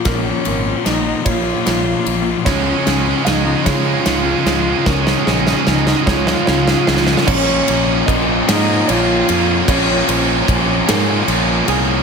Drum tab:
CC |------------------------|------------------------|------------------------|x-----------------------|
RD |x---x---x---x---x---x---|x---x---x---x---x---x---|------------------------|----x---x---x---x---x---|
SD |o-------o-------o-------|o---o---o---o---o---o---|o-o-o-o-o-o-o-o-o-o-oooo|------------o-----------|
BD |o-----------o-----------|o-----------o-----------|o-----------o-----------|o-------o---------------|

CC |------------------------|
RD |x---x---x---x---x---x---|
SD |------------o-----------|
BD |o-------o---------------|